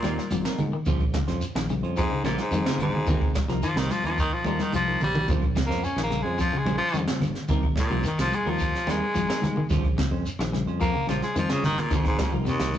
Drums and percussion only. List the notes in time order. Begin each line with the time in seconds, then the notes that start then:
0.03 snare, closed hi-hat, high conga, claves, shekere
0.19 snare
0.31 closed hi-hat, high conga, shekere
0.45 snare
0.58 closed hi-hat, high conga, low conga, claves, shekere
0.86 kick, closed hi-hat, high conga, low conga, shekere
1.00 kick, closed hi-hat, claves
1.13 kick, snare, closed hi-hat, high conga, shekere
1.28 snare, closed hi-hat
1.41 closed hi-hat, high conga, shekere
1.56 snare, claves
1.69 closed hi-hat, high conga, shekere
1.84 closed hi-hat
1.97 kick, closed hi-hat, high conga, claves, shekere
2.11 closed hi-hat
2.25 snare, closed hi-hat, high conga, claves, shekere
2.38 snare
2.51 closed hi-hat, high conga, shekere
2.66 snare, closed hi-hat
2.79 closed hi-hat, high conga, low conga, claves, shekere
2.96 low conga
3.07 kick, closed hi-hat, high conga, low conga, shekere
3.21 kick, claves
3.34 kick, snare, closed hi-hat, high conga, shekere
3.49 snare, closed hi-hat
3.63 closed hi-hat, shekere
3.77 snare, claves
3.90 snare, open hi-hat, high conga, shekere
4.05 closed hi-hat
4.18 kick, closed hi-hat, high conga, claves, shekere
4.44 closed hi-hat, high conga, claves, shekere
4.59 snare, high conga
4.73 closed hi-hat, high conga, shekere
5.00 closed hi-hat, low conga, claves, shekere
5.15 low conga
5.28 kick, closed hi-hat, high conga, low conga, shekere
5.42 kick, closed hi-hat, claves
5.56 kick, snare, closed hi-hat, high conga, shekere
5.71 snare, closed hi-hat
5.84 closed hi-hat, high conga, shekere
5.97 snare, claves
6.11 snare, closed hi-hat, high conga, shekere
6.25 closed hi-hat
6.38 kick, snare, closed hi-hat, high conga, claves, shekere
6.53 closed hi-hat
6.66 closed hi-hat, high conga, claves, shekere
6.94 closed hi-hat, high conga, shekere
7.08 snare
7.20 snare, closed hi-hat, high conga, low conga, claves, shekere
7.35 snare
7.48 kick, closed hi-hat, high conga, low conga, shekere
7.63 kick, claves
7.76 kick, snare, closed hi-hat, high conga, shekere
7.90 closed hi-hat
8.03 closed hi-hat, high conga, shekere
8.18 snare, claves
8.31 closed hi-hat, high conga, shekere
8.47 closed hi-hat
8.59 kick, closed hi-hat, claves, shekere
8.75 snare
8.87 snare, closed hi-hat, high conga, claves, shekere
9.15 closed hi-hat, high conga, shekere
9.30 snare
9.42 snare, closed hi-hat, high conga, low conga, claves, shekere
9.56 low conga
9.70 kick, snare, closed hi-hat, high conga, low conga, shekere
9.84 kick, closed hi-hat, claves
9.98 kick, snare, closed hi-hat, high conga, shekere
10.13 closed hi-hat
10.26 closed hi-hat, high conga, shekere
10.39 snare, claves
10.53 snare, closed hi-hat, high conga, shekere
10.67 closed hi-hat
10.81 kick, closed hi-hat, high conga, claves, shekere
10.95 closed hi-hat
11.08 snare, closed hi-hat, high conga, claves, shekere
11.22 snare
11.36 closed hi-hat, high conga, shekere
11.49 snare, closed hi-hat
11.63 snare, closed hi-hat, high conga, low conga, claves, shekere
11.78 snare, low conga
11.91 kick, snare, closed hi-hat, high conga, low conga, shekere
12.04 kick, snare, claves
12.18 kick, snare, closed hi-hat, high conga, shekere
12.33 closed hi-hat
12.46 closed hi-hat, high conga, shekere
12.60 snare, claves
12.74 open hi-hat, high conga, shekere